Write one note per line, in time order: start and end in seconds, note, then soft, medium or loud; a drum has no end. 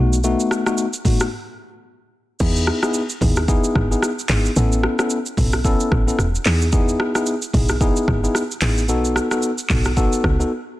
0.00 0.36 B1 loud
0.00 0.18 A3 medium
0.00 0.18 B3 medium
0.00 0.18 D#4 medium
0.00 0.18 F#4 medium
0.13 shaker medium
0.24 0.63 A3 medium
0.24 0.63 B3 medium
0.24 0.63 D#4 medium
0.24 0.63 F#4 loud
0.24 shaker medium
0.40 shaker soft
0.51 cross-stick medium
0.51 shaker medium
0.66 0.85 A3 medium
0.66 0.85 B3 medium
0.66 0.86 D#4 medium
0.66 0.86 F#4 medium
0.66 cross-stick medium
0.66 shaker medium
0.78 shaker medium
0.93 shaker medium
1.05 1.26 A3 medium
1.05 1.26 B3 medium
1.05 1.26 D#4 medium
1.05 1.26 F#4 medium
1.05 kick medium
1.05 mid tom medium
1.05 open hi-hat medium
1.05 shaker medium
1.20 cross-stick medium
1.20 shaker medium
2.40 2.71 E2 loud
2.40 2.79 B3 medium
2.40 2.79 D#4 medium
2.40 2.79 E4 medium
2.40 2.79 G#4 loud
2.40 kick loud
2.40 crash loud
2.40 shaker medium
2.56 shaker medium
2.67 cross-stick medium
2.83 3.02 B3 medium
2.83 3.02 D#4 medium
2.83 3.02 E4 medium
2.83 3.02 G#4 medium
2.83 cross-stick medium
2.83 shaker medium
2.94 shaker medium
3.10 shaker medium
3.21 3.60 D#2 medium
3.21 3.42 B3 medium
3.21 3.42 D#4 medium
3.21 3.42 E4 medium
3.21 3.43 G#4 medium
3.21 kick loud
3.21 mid tom medium
3.21 open hi-hat medium
3.21 shaker medium
3.36 cross-stick medium
3.36 shaker medium
3.48 3.87 B3 medium
3.48 3.87 D#4 medium
3.48 3.87 E4 medium
3.48 3.87 G#4 loud
3.48 kick loud
3.48 shaker medium
3.64 shaker medium
3.75 3.95 G#1 medium
3.75 kick medium
3.75 cross-stick medium
3.91 4.10 B3 medium
3.91 4.10 D#4 medium
3.91 4.10 E4 medium
3.91 4.10 G#4 medium
3.91 shaker medium
4.02 cross-stick medium
4.02 shaker medium
4.19 shaker medium
4.29 4.49 G#1 loud
4.29 4.50 B3 medium
4.29 4.51 D#4 medium
4.29 4.51 E4 medium
4.29 4.51 G#4 medium
4.29 clap loud
4.29 open hi-hat medium
4.46 shaker medium
4.56 4.87 A1 loud
4.56 4.95 B3 loud
4.56 4.95 C#4 medium
4.56 4.95 E4 medium
4.56 4.96 A4 loud
4.56 shaker medium
4.72 shaker soft
4.83 cross-stick medium
4.99 5.18 B3 medium
4.99 5.18 C#4 medium
4.99 5.18 E4 medium
4.99 5.18 A4 medium
4.99 cross-stick loud
4.99 shaker medium
5.10 shaker medium
5.26 shaker medium
5.37 5.77 B1 medium
5.37 5.59 B3 medium
5.37 5.59 C#4 medium
5.37 5.59 E4 medium
5.37 5.59 A4 medium
5.37 kick loud
5.37 mid tom medium
5.37 open hi-hat medium
5.37 shaker medium
5.52 cross-stick medium
5.52 shaker medium
5.64 6.03 B3 loud
5.64 6.04 C#4 medium
5.64 6.04 E4 medium
5.64 6.04 A4 loud
5.64 kick medium
5.64 shaker medium
5.80 shaker medium
5.92 6.11 A1 medium
5.92 kick medium
5.92 cross-stick medium
6.07 6.26 B3 medium
6.07 6.26 C#4 medium
6.07 6.26 E4 medium
6.07 6.26 A4 medium
6.07 shaker medium
6.19 6.38 E1 loud
6.19 cross-stick medium
6.19 shaker medium
6.35 shaker medium
6.45 6.96 E2 loud
6.45 6.67 B3 medium
6.45 6.67 D#4 medium
6.45 6.67 E4 medium
6.45 6.67 G#4 medium
6.45 clap loud
6.45 open hi-hat medium
6.62 shaker medium
6.72 7.12 B3 medium
6.72 7.12 D#4 medium
6.72 7.12 E4 medium
6.72 7.12 G#4 loud
6.72 kick loud
6.72 shaker medium
6.89 shaker soft
7.00 cross-stick loud
7.15 7.34 B3 medium
7.15 7.34 D#4 medium
7.15 7.34 E4 medium
7.15 7.34 G#4 medium
7.15 cross-stick medium
7.15 shaker medium
7.26 shaker medium
7.42 shaker medium
7.53 7.93 B1 medium
7.53 7.75 B3 medium
7.53 7.75 D#4 medium
7.53 7.75 E4 medium
7.53 7.75 G#4 medium
7.53 kick loud
7.53 mid tom medium
7.53 open hi-hat medium
7.53 shaker medium
7.69 cross-stick medium
7.69 shaker medium
7.81 8.20 B3 medium
7.81 8.20 D#4 medium
7.81 8.20 E4 medium
7.81 8.20 G#4 loud
7.81 kick medium
7.81 shaker medium
7.96 shaker medium
8.08 8.27 G#1 loud
8.08 kick medium
8.08 cross-stick medium
8.23 8.42 B3 medium
8.23 8.42 D#4 medium
8.23 8.42 E4 medium
8.23 8.42 G#4 medium
8.23 shaker medium
8.35 cross-stick medium
8.35 shaker medium
8.51 shaker medium
8.61 8.90 A1 medium
8.61 8.83 B3 medium
8.61 8.83 D#4 medium
8.61 8.83 E4 medium
8.61 8.83 G#4 medium
8.61 clap loud
8.61 open hi-hat medium
8.78 shaker medium
8.89 9.20 B1 loud
8.89 9.28 B3 medium
8.89 9.28 D#4 medium
8.89 9.28 F#4 medium
8.89 9.28 A4 loud
8.89 shaker medium
9.05 shaker soft
9.16 cross-stick medium
9.16 shaker medium
9.31 9.50 B3 medium
9.31 9.50 D#4 medium
9.31 9.50 F#4 medium
9.31 9.51 A4 medium
9.31 cross-stick loud
9.31 shaker medium
9.42 shaker medium
9.58 shaker medium
9.70 10.09 B1 medium
9.70 9.91 B3 medium
9.70 9.91 D#4 medium
9.70 9.91 F#4 medium
9.70 9.91 A4 medium
9.70 kick loud
9.70 clap medium
9.70 mid tom medium
9.70 open hi-hat medium
9.70 shaker medium
9.85 cross-stick medium
9.85 shaker medium
9.97 10.36 B3 loud
9.97 10.36 D#4 medium
9.97 10.36 F#4 medium
9.97 10.36 A4 loud
9.97 kick medium
9.97 shaker medium
10.13 shaker medium
10.24 10.43 C#2 medium
10.24 kick medium
10.24 cross-stick medium
10.39 10.51 B3 medium
10.39 10.51 D#4 medium
10.39 10.51 F#4 medium
10.39 10.51 A4 medium
10.39 shaker soft